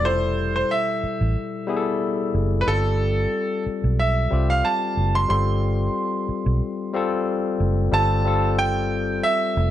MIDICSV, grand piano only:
0, 0, Header, 1, 2, 480
1, 0, Start_track
1, 0, Tempo, 656455
1, 35, Time_signature, 4, 2, 24, 8
1, 7098, End_track
2, 0, Start_track
2, 0, Title_t, "Grand piano"
2, 0, Program_c, 0, 0
2, 37, Note_on_c, 0, 72, 91
2, 396, Note_off_c, 0, 72, 0
2, 407, Note_on_c, 0, 72, 80
2, 520, Note_on_c, 0, 76, 85
2, 521, Note_off_c, 0, 72, 0
2, 1692, Note_off_c, 0, 76, 0
2, 1908, Note_on_c, 0, 71, 81
2, 1957, Note_off_c, 0, 71, 0
2, 1958, Note_on_c, 0, 69, 98
2, 2650, Note_off_c, 0, 69, 0
2, 2921, Note_on_c, 0, 76, 85
2, 3290, Note_on_c, 0, 77, 83
2, 3302, Note_off_c, 0, 76, 0
2, 3398, Note_on_c, 0, 81, 87
2, 3404, Note_off_c, 0, 77, 0
2, 3767, Note_on_c, 0, 84, 92
2, 3780, Note_off_c, 0, 81, 0
2, 3864, Note_off_c, 0, 84, 0
2, 3875, Note_on_c, 0, 84, 96
2, 5289, Note_off_c, 0, 84, 0
2, 5803, Note_on_c, 0, 81, 102
2, 6252, Note_off_c, 0, 81, 0
2, 6278, Note_on_c, 0, 79, 103
2, 6729, Note_off_c, 0, 79, 0
2, 6752, Note_on_c, 0, 76, 101
2, 7098, Note_off_c, 0, 76, 0
2, 7098, End_track
0, 0, End_of_file